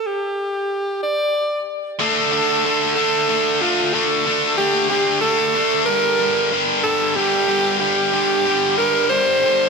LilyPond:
<<
  \new Staff \with { instrumentName = "Alto saxophone" } { \time 6/8 \key d \phrygian \tempo 4. = 62 g'4. d''4 r8 | a'4. a'4 f'8 | a'4 g'8 g'8 a'4 | bes'4 r8 a'8 g'4 |
g'4. bes'8 c''4 | }
  \new Staff \with { instrumentName = "Distorted electric guitar" } { \clef bass \time 6/8 \key d \phrygian r2. | <d a d'>8 <d a d'>8 <d a d'>8 <d a d'>8 <d a d'>8 <d a d'>8 | <d a d'>8 <d a d'>8 <d a d'>8 <d a d'>8 <d a d'>8 <d a d'>8 | <g, d g>8 <g, d g>8 <g, d g>8 <g, d g>8 <g, d g>8 <g, d g>8 |
<g, d g>8 <g, d g>8 <g, d g>8 <g, d g>8 <g, d g>8 <g, d g>8 | }
>>